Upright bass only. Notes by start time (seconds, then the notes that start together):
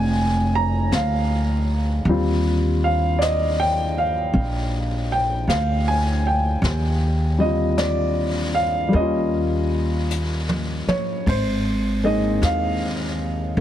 Already playing: F1
0.92 D2
2.05 D#2
4.33 A#1
5.47 D2
6.62 D#2
8.93 D#2
10.87 muted upright bass stroke
11.27 G#1
12.42 D#2
13.57 C2